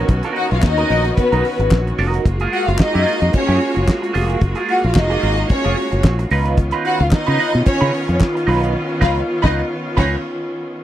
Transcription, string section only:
Already playing: D#3 B3 C#4 F#4
2.24 G#3 A#3 F4 F#4
6.31 D#3 B3 C#4 F4

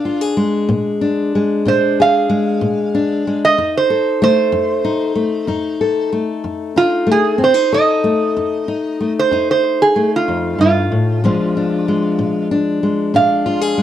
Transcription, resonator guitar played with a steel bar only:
Already playing: F5
1.68 C5
2.02 F5
3.45 D#5
3.77 C5
4.24 C5
6.77 F4
7.12 G#4
7.44 C5
7.74 D#5
9.19 C5
9.51 C5
9.82 G#4
10.16 F4
10.61 F4
13.16 F5

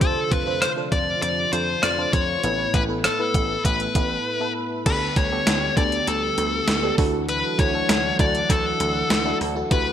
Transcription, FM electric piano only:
Already playing: D4 F4 A4 C5
0.46 D4 F4 A4 C5
0.76 D4 F4 A4 C5
1.52 D4 F4 A4 C5
1.98 D4 F4 A4 C5
2.43 A2 B3 E4 A4 B4
2.88 B3 E4 A4 B4
3.19 B3 E4 A4 B4
3.94 B3 E4 A4 B4
4.40 B3 E4 A4 B4
4.86 D3 B3 D4 G4 A4
5.31 B3 D4 G4 A4
5.76 B3 D4 G4 A4
6.83 B3 D4 G4 A4
6.97 D3 D4 E4 F#4 A4
7.73 D4 E4 F#4 A4
8.19 D4 E4 F#4 A4
9.25 D4 E4 F#4 A4
9.55 D4 E4 F#4 A4
9.70 D3 E4 F#4 G4 B4

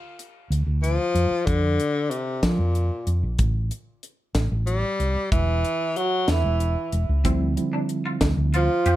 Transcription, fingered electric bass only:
0.50 D2
0.67 D2
1.15 F2
1.31 muted fingered electric bass stroke
1.47 F2
2.43 F3
2.59 F2
3.07 F2
3.23 A#1
3.39 A1
4.35 A1
4.52 A1
5.00 C2
5.16 muted fingered electric bass stroke
5.32 E1
6.28 E2
6.44 E1
6.93 E1
7.09 C#2
7.25 D2
8.21 D2
8.37 D2
8.86 F2

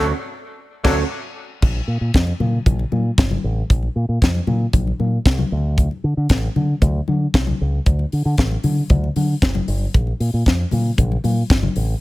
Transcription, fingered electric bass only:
Already playing: D2
0.85 D2
1.62 A#1
1.88 A#2
2.01 A#2
2.15 F2
2.40 A#2
2.66 A#1
2.92 A#2
3.18 G1
3.44 A1
3.70 A#1
3.96 A#2
4.09 A#2
4.22 F2
4.47 A#2
4.73 A#1
5.00 A#2
5.25 C2
5.52 D2
6.04 D3
6.17 D3
6.30 A1
6.56 D3
6.82 D2
7.08 D3
7.34 B1
7.61 C#2
7.86 D2
8.13 D3
8.25 D3
8.38 A1
8.64 D3
8.90 D2
9.16 D3
9.42 F#1
9.68 G1
9.94 A#1
10.20 A#2
10.34 A#2
10.46 F2
10.72 A#2
10.98 A#1
11.24 A#2
11.50 G1
11.76 A1

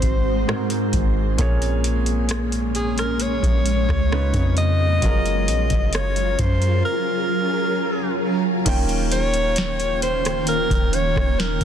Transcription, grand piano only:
Already playing: G#2 G#3 F#4 A#4 C5
0.48 G#2 G#3 F#4 A#4 C5
1.38 A#2 A#3 C#4 G#4 C#5
4.11 C#3 C#4 D#4 F4 B4
5.02 F#3 C#4 F4 G#4 A#4
8.65 D#3 A#3 C#4 F4 G5

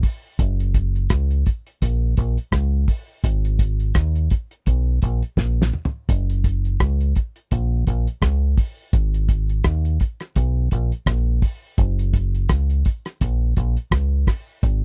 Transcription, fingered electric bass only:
0.39 F#1
1.11 C#2
1.82 A#1
2.18 A#1
2.53 C#2
3.24 G#1
3.96 D#2
4.67 B1
5.03 A#1
5.38 A#1
6.09 F#1
6.80 C#2
7.52 A#1
7.88 A#1
8.22 C#2
8.94 G#1
9.65 D#2
10.37 B1
10.72 A#1
11.07 A#1
11.78 F#1
12.50 C#2
13.22 A#1
13.57 A#1
13.92 C#2
14.63 G#1

